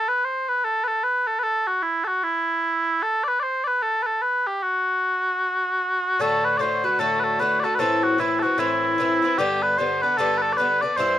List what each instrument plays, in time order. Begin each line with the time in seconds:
0.08 bagpipes B4
0.24 bagpipes C5
0.49 bagpipes B4
0.64 bagpipes A4
0.84 bagpipes A4 B4
1.04 bagpipes B4
1.27 bagpipes A4
1.39 bagpipes B4
1.43 bagpipes A4
1.67 bagpipes F#4
1.82 bagpipes E4
2.04 bagpipes F#4 A4
2.23 bagpipes E4
3.03 bagpipes A4
3.24 bagpipes D5
3.28 bagpipes B4
3.40 bagpipes C5 D5
3.64 bagpipes B4 D5
3.82 bagpipes A4
4.03 bagpipes A4 B4
4.22 bagpipes B4
4.47 bagpipes G4
4.63 bagpipes F#4
6.19 bouzouki A2 D3 A3 F#4, bagpipes A4
6.45 bagpipes B4
6.57 bouzouki A2 D3 A3, bagpipes C5 D5
6.62 bouzouki F#4
6.84 bouzouki D3 A3 F#4, bagpipes B4
6.99 bouzouki A2 D3 A3 F#4, bagpipes A4
7.20 bagpipes B4
7.24 bagpipes A4
7.39 bouzouki A2 D3 A3 F#4, bagpipes B4
7.60 bagpipes D5
7.64 bouzouki D3 A3 F#4, bagpipes A4
7.75 bouzouki A2, bagpipes B4
7.79 bouzouki E3 C4 E4, bagpipes A4
8.03 bagpipes F#4
8.18 bouzouki A2 E3 C4 E4, bagpipes E4
8.39 bouzouki E4, bagpipes F#4 A4
8.44 bouzouki E3 C4
8.58 bouzouki A2 E3 C4 E4, bagpipes E4
8.98 bouzouki A2 E3 C4 E4
9.22 bouzouki E3 C4 E4
9.38 bouzouki G2 D3 B3 D4, bagpipes G4
9.63 bagpipes B4
9.78 bouzouki G2 D3 B3 D4, bagpipes C5
10.02 bouzouki B3 D4, bagpipes B4
10.06 bouzouki D3
10.17 bouzouki G2 D3 B3 D4, bagpipes A4
10.38 bagpipes B4
10.42 bagpipes A4
10.53 bagpipes D5
10.57 bouzouki G2 D3 B3, bagpipes B4
10.61 bouzouki D4
10.81 bouzouki B3 D4, bagpipes D5
10.85 bouzouki D3
10.97 bouzouki G2 E3 C4 E4, bagpipes C5